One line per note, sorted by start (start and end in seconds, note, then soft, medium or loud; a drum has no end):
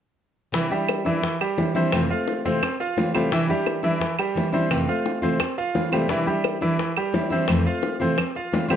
0.52 0.70 C3 medium
0.52 0.70 E3 medium
0.52 0.68 E3 medium
0.52 0.70 G3 medium
0.52 0.70 D4 medium
0.52 0.69 E4 medium
0.52 high bongo medium
0.70 1.00 G3 medium
0.70 1.05 G3 soft
0.70 1.04 D4 soft
0.70 1.04 E4 soft
0.70 1.00 G4 medium
0.89 high bongo medium
0.89 claves medium
1.05 1.35 E3 medium
1.05 1.21 E3 soft
1.05 1.22 G3 medium
1.05 1.22 D4 soft
1.05 1.22 E4 medium
1.05 1.35 E4 medium
1.05 high bongo soft
1.22 muted nylon-string guitar stroke soft
1.22 high bongo medium
1.41 1.69 G3 medium
1.41 1.70 G4 medium
1.41 high bongo soft
1.41 claves medium
1.57 1.75 E3 soft
1.57 1.75 G3 soft
1.57 1.74 D4 medium
1.57 1.73 E4 medium
1.57 high bongo soft
1.57 low bongo medium
1.75 1.92 E3 medium
1.75 1.93 G3 medium
1.75 2.04 C4 medium
1.75 1.92 D4 medium
1.75 1.92 E4 medium
1.75 2.05 C5 medium
1.75 high bongo soft
1.92 2.09 F2 medium
1.92 2.10 C3 medium
1.92 2.10 E3 medium
1.92 2.10 A3 medium
1.92 2.10 C4 medium
1.92 2.10 F4 medium
1.92 high bongo medium
1.92 claves medium
2.10 2.45 A3 soft
2.10 2.44 C4 soft
2.10 2.39 F4 medium
2.10 2.39 F5 medium
2.28 high bongo medium
2.45 2.61 C3 soft
2.45 2.62 E3 soft
2.45 2.62 A3 soft
2.45 2.62 C4 medium
2.45 2.74 C4 medium
2.45 2.62 F4 medium
2.45 2.74 C5 medium
2.45 high bongo soft
2.63 muted nylon-string guitar stroke soft
2.63 high bongo medium
2.63 claves medium
2.80 3.09 F4 medium
2.80 3.09 F5 medium
2.80 high bongo soft
2.97 3.14 E3 soft
2.97 3.14 A3 soft
2.97 3.14 C4 soft
2.97 3.13 F4 soft
2.97 high bongo soft
2.97 low bongo medium
3.14 3.30 C3 medium
3.14 3.31 E3 medium
3.14 3.29 G3 medium
3.14 3.32 A3 medium
3.14 3.31 C4 medium
3.14 3.31 F4 medium
3.14 3.29 G4 medium
3.14 high bongo soft
3.14 claves medium
3.31 3.48 C3 medium
3.31 3.49 E3 medium
3.31 3.47 E3 medium
3.31 3.49 G3 medium
3.31 3.49 D4 medium
3.31 3.47 E4 medium
3.31 3.48 E4 medium
3.31 high bongo medium
3.49 3.78 G3 medium
3.49 3.83 G3 soft
3.49 3.83 D4 soft
3.49 3.82 E4 soft
3.49 3.78 G4 medium
3.66 high bongo medium
3.66 claves medium
3.83 4.13 E3 medium
3.83 3.99 E3 soft
3.83 3.99 G3 soft
3.83 3.99 D4 soft
3.83 4.00 E4 medium
3.83 4.13 E4 medium
3.83 high bongo soft
4.00 muted nylon-string guitar stroke soft
4.00 high bongo medium
4.19 4.47 G3 medium
4.19 4.48 G4 medium
4.19 high bongo soft
4.19 claves medium
4.35 4.52 E3 soft
4.35 4.52 G3 medium
4.35 4.52 D4 soft
4.35 4.51 E4 medium
4.35 high bongo soft
4.35 low bongo medium
4.52 4.69 E3 medium
4.52 4.70 G3 medium
4.52 4.82 C4 medium
4.52 4.70 D4 medium
4.52 4.70 E4 medium
4.52 4.82 C5 medium
4.52 high bongo soft
4.70 4.87 F2 medium
4.70 4.87 C3 medium
4.70 4.88 E3 medium
4.70 4.87 A3 medium
4.70 4.86 C4 medium
4.70 4.88 F4 medium
4.70 high bongo medium
4.70 claves medium
4.88 5.22 A3 soft
4.88 5.21 C4 soft
4.88 5.17 F4 medium
4.88 5.17 F5 medium
5.06 high bongo medium
5.22 5.38 C3 soft
5.22 5.39 E3 soft
5.22 5.39 A3 medium
5.22 5.39 C4 soft
5.22 5.52 C4 medium
5.22 5.39 F4 medium
5.22 5.52 C5 medium
5.22 high bongo soft
5.39 muted nylon-string guitar stroke soft
5.39 high bongo medium
5.39 claves medium
5.58 5.86 F4 medium
5.58 5.86 F5 medium
5.58 high bongo soft
5.74 5.91 E3 soft
5.74 5.92 A3 soft
5.74 5.91 C4 soft
5.74 5.91 F4 medium
5.74 high bongo soft
5.74 low bongo medium
5.92 6.07 C3 soft
5.92 6.07 E3 medium
5.92 6.07 G3 medium
5.92 6.09 A3 soft
5.92 6.09 C4 medium
5.92 6.09 F4 medium
5.92 6.07 G4 medium
5.92 high bongo soft
5.92 claves medium
6.08 6.26 C3 medium
6.08 6.26 E3 medium
6.08 6.24 E3 medium
6.08 6.26 G3 medium
6.08 6.26 D4 medium
6.08 6.25 E4 medium
6.08 6.24 E4 medium
6.08 high bongo medium
6.27 6.55 G3 medium
6.27 6.61 G3 soft
6.27 6.60 D4 soft
6.27 6.60 E4 soft
6.27 6.56 G4 medium
6.44 high bongo medium
6.44 claves medium
6.61 6.90 E3 medium
6.61 6.78 E3 soft
6.61 6.78 G3 soft
6.61 6.78 D4 soft
6.61 6.78 E4 medium
6.61 6.91 E4 medium
6.61 high bongo soft
6.79 muted nylon-string guitar stroke soft
6.79 high bongo medium
6.97 7.25 G3 medium
6.97 7.26 G4 medium
6.97 high bongo soft
6.97 claves medium
7.13 7.30 E3 soft
7.13 7.31 G3 soft
7.13 7.30 D4 medium
7.13 7.29 E4 soft
7.13 high bongo soft
7.13 low bongo medium
7.30 7.47 E3 medium
7.30 7.48 G3 medium
7.30 7.60 C4 medium
7.30 7.48 D4 medium
7.30 7.47 E4 medium
7.30 7.60 C5 medium
7.30 high bongo soft
7.48 7.65 F2 medium
7.48 7.65 C3 medium
7.48 7.65 E3 medium
7.48 7.65 A3 medium
7.48 7.65 C4 medium
7.48 7.66 F4 medium
7.48 high bongo medium
7.48 claves medium
7.66 8.00 A3 soft
7.66 7.99 C4 soft
7.66 7.95 F4 medium
7.66 7.95 F5 medium
7.83 high bongo medium
8.00 8.17 C3 soft
8.00 8.17 E3 soft
8.00 8.17 A3 medium
8.00 8.17 C4 medium
8.00 8.30 C4 medium
8.00 8.17 F4 medium
8.00 8.30 C5 medium
8.00 high bongo soft
8.18 muted nylon-string guitar stroke medium
8.18 high bongo medium
8.18 claves medium
8.35 8.64 F4 medium
8.35 8.64 F5 medium
8.35 high bongo soft
8.52 8.69 E3 soft
8.52 8.69 A3 soft
8.52 8.68 C4 soft
8.52 8.67 F4 medium
8.52 high bongo soft
8.52 low bongo medium
8.68 8.76 C3 medium
8.68 8.76 E3 medium
8.68 8.76 G3 medium
8.68 8.76 A3 medium
8.68 8.76 C4 medium
8.68 8.76 F4 medium
8.68 8.76 G4 medium
8.68 high bongo soft
8.68 claves medium